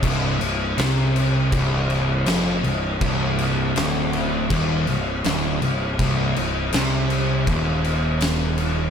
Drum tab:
CC |xxxxxxxx|xxxxxxxx|xxxxxxxx|
SD |--o---o-|--o---o-|--o---o-|
BD |o---o---|o---o---|o---o---|